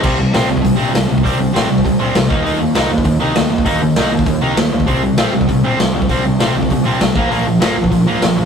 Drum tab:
CC |x---------------|----------------|----------------|----------------|
HH |----o---o---o---|o---o---o---o---|o---o---o---o---|o---o---o---o---|
SD |----o-------o---|----o-------o---|----o-------o---|----o-------o---|
BD |o------oo------o|o------oo-----o-|-------oo------o|o------oo------o|

CC |----------------|----------------|----------------|
HH |o---o---o---o---|o---o---o---o---|o---o---o---o---|
SD |----o-------o---|----o-------o---|----o-------o---|
BD |o------oo------o|o------oo-----o-|-------oo-------|